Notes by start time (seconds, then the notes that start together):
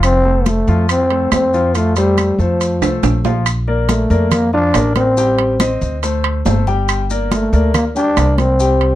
Already playing: F1 F3 F4 F5
0.03 C4, high conga, high timbale, claves, maracas
0.25 A3 A4 C5, high conga
0.46 A3, high conga, high timbale, maracas
0.67 F2 F3 F4 F5, maracas
0.89 C4, high conga, high timbale, claves, maracas
1.10 A3 A4 C5, high conga, high timbale
1.32 F2 C4, high conga, high timbale, low timbale, claves, maracas
1.53 F3 F4 F5, high conga, maracas
1.75 F3 A3 F4 F5, high conga, high timbale, maracas
1.96 G3 A3 A4 C5, high conga, high timbale, maracas
2.18 high conga, high timbale, claves, maracas
2.39 F2 F3 A3 A4 C5, high conga, maracas
2.60 high conga, high timbale, maracas
2.81 C2 A3 A4 C5, high conga, high timbale, claves, maracas
3.03 A#1, high conga, high timbale, maracas
3.24 F3 F4 F5, high conga, low timbale, maracas
3.46 high conga, high timbale, claves, maracas
3.68 A#3 A#4 D5, high conga
3.89 A3, high conga, high timbale, low timbale, maracas
4.10 F2 A#3 A#4 D5, high conga, maracas
4.31 A#3, high conga, low conga, high timbale, claves, maracas
4.53 F3 D4 F4 F5, high conga
4.74 A1 A#3 A#4 D5, high conga, high timbale, low timbale, claves, maracas
4.96 C4, high conga, high timbale, maracas
5.17 G3 G4 G5, high conga, maracas
5.38 high conga, high timbale
5.60 C4 C5 D#5, high conga, high timbale, low timbale, claves, maracas
5.81 D2, high conga, maracas
6.03 A3 A4 C5, high conga, high timbale, maracas
6.24 high conga, high timbale, claves
6.46 G1 A3 A4 C5, high conga, low timbale, maracas
6.67 G3 G4 G5, high conga, maracas
6.89 high conga, high timbale, claves, maracas
7.10 A#3 A#4 D5, high conga, maracas
7.31 A3, high conga, high timbale, low timbale, maracas
7.53 D2 A#3 A#4 D5, high conga, maracas
7.74 A#3, high conga, low conga, high timbale, claves, maracas
7.96 G3 D4 G4 G5, high conga, maracas
8.17 C2 A#3 A#4 D5, high conga, high timbale, low timbale, claves, maracas
8.38 C4, high conga, high timbale, maracas
8.60 G3 G4 G5, high conga, maracas
8.81 high conga, high timbale